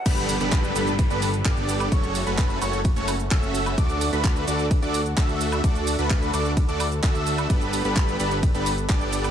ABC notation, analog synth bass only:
X:1
M:4/4
L:1/16
Q:1/4=129
K:Glyd
V:1 name="Analog synth bass" clef=bass
G,,,3 G,,,3 G,,,3 G,,,3 G,,,4 | F,,,3 F,,,3 F,,,3 F,,,3 F,,,4 | D,,3 D,,3 D,,3 D,,3 D,,4 | D,,3 D,,3 D,,3 D,,3 D,,4 |
G,,,3 G,,,3 G,,,3 G,,,3 G,,,4 |]